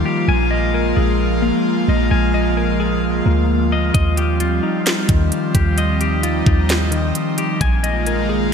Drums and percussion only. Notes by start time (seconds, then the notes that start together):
3.95 kick, closed hi-hat
4.17 closed hi-hat
4.40 closed hi-hat
4.86 snare, closed hi-hat
5.09 kick, closed hi-hat
5.32 closed hi-hat
5.55 kick, closed hi-hat
5.78 closed hi-hat
6.01 closed hi-hat
6.23 closed hi-hat
6.46 kick
6.69 snare, closed hi-hat
6.92 closed hi-hat
7.15 closed hi-hat
7.38 closed hi-hat
7.61 kick, closed hi-hat
7.84 closed hi-hat
8.06 closed hi-hat